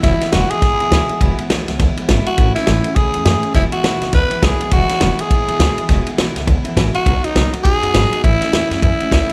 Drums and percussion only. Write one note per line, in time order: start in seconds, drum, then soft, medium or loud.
0.03 kick loud
0.03 snare soft
0.03 ride medium
0.21 snare soft
0.21 ride medium
0.32 snare loud
0.32 ride medium
0.50 ride medium
0.62 kick loud
0.62 snare soft
0.62 ride medium
0.80 ride medium
0.92 snare loud
0.92 ride medium
1.09 ride medium
1.21 kick loud
1.21 ride medium
1.39 ride medium
1.50 snare loud
1.50 ride medium
1.68 snare soft
1.68 ride medium
1.79 kick loud
1.79 snare soft
1.79 ride medium
1.97 ride medium
2.09 kick medium
2.09 snare loud
2.09 ride loud
2.26 ride medium
2.38 kick loud
2.38 ride medium
2.56 snare soft
2.56 ride medium
2.67 snare loud
2.67 ride medium
2.84 ride medium
2.96 kick loud
2.96 ride medium
3.14 ride medium
3.25 snare loud
3.25 ride medium
3.43 ride medium
3.54 kick loud
3.54 snare soft
3.54 ride medium
3.72 ride medium
3.84 snare loud
3.84 ride medium
4.02 snare soft
4.02 ride medium
4.13 kick loud
4.13 snare soft
4.13 ride medium
4.31 ride medium
4.42 kick medium
4.42 snare loud
4.42 ride loud
4.61 ride medium
4.71 kick loud
4.71 ride medium
4.89 snare soft
4.89 ride medium
5.01 snare loud
5.01 ride loud
5.19 ride medium
5.31 kick loud
5.31 ride medium
5.48 ride medium
5.60 snare loud
5.60 ride medium
5.78 ride medium
5.89 kick loud
5.89 snare soft
5.89 ride medium
6.07 ride medium
6.18 snare loud
6.18 ride medium
6.36 snare soft
6.36 ride medium
6.47 kick loud
6.47 ride medium
6.65 ride medium
6.77 kick medium
6.77 snare loud
6.77 ride medium
6.94 ride medium
7.06 kick loud
7.06 ride medium
7.24 ride medium
7.36 snare loud
7.36 ride medium
7.53 ride medium
7.65 kick loud
7.65 ride medium
7.83 ride medium
7.94 snare loud
7.94 ride loud
8.13 ride medium
8.24 kick loud
8.24 ride medium
8.42 snare soft
8.42 ride medium
8.53 snare loud
8.53 ride medium
8.71 snare soft
8.71 ride medium
8.82 kick loud
8.82 ride medium
9.00 ride medium
9.12 kick medium
9.12 snare loud
9.12 ride medium
9.29 ride medium